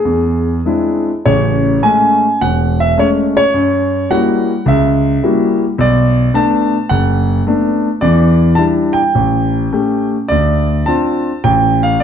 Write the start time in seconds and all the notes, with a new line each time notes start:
Already playing: G#4
0.05 E2
0.66 G#3 C4 D4 E4
1.26 A1 C#3 C#5
1.82 G#3 A3 C#4 G#5
2.41 E1 F#5
2.80 E5
2.97 G#3 A3 C#4 C#5
3.37 C#5
3.54 F#2
4.10 G3 A#3 E4 F#4 F#5
4.66 C#2 E5
5.23 G3 A#3 E4 F#4
5.78 B1 D5
6.34 A3 B3 D4 A5
6.89 F#1 F#5
7.47 A3 B3 D4
8.01 E2 E3 D5
8.55 G3 D4 E4 A5
8.93 G5
9.15 A1
9.73 A3 C#4 G4
10.28 D2 D5
10.86 C4 D4 F4 A5
11.44 A1 G5
11.83 F5
12.00 D5